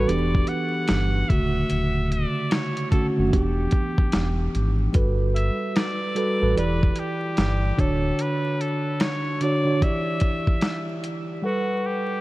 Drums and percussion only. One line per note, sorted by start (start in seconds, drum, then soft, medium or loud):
0.09 closed hi-hat medium
0.35 kick medium
0.47 closed hi-hat medium
0.88 snare loud
0.88 closed hi-hat medium
1.30 kick loud
1.30 closed hi-hat medium
1.70 closed hi-hat medium
2.12 closed hi-hat medium
2.51 snare loud
2.51 closed hi-hat medium
2.77 closed hi-hat soft
2.92 kick medium
2.92 closed hi-hat medium
3.33 kick medium
3.33 closed hi-hat medium
3.71 kick medium
3.71 closed hi-hat medium
3.98 kick medium
4.12 snare loud
4.12 closed hi-hat medium
4.55 closed hi-hat medium
4.94 kick loud
4.94 closed hi-hat medium
5.36 closed hi-hat medium
5.76 snare loud
5.76 closed hi-hat medium
6.16 closed hi-hat medium
6.58 closed hi-hat medium
6.83 kick loud
6.96 closed hi-hat medium
7.37 snare loud
7.37 closed hi-hat medium
7.79 kick medium
7.79 closed hi-hat medium
8.19 closed hi-hat medium
8.61 closed hi-hat medium
9.00 snare loud
9.00 closed hi-hat medium
9.41 closed hi-hat medium
9.82 kick medium
9.82 closed hi-hat medium
10.20 kick medium
10.20 closed hi-hat medium
10.47 kick medium
10.61 snare loud
10.61 closed hi-hat medium
11.04 closed hi-hat medium